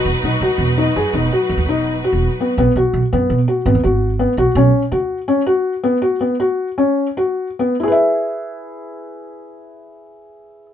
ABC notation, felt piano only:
X:1
M:7/4
L:1/8
Q:1/4=166
K:E
V:1 name="Felt piano"
F D F2 D G D F2 D2 F2 B, | B, F2 B,2 F B, F2 B, F C2 F- | F C F2 B, F B, F2 C2 F2 B, | [EGBe]12- [EGBe]2 |]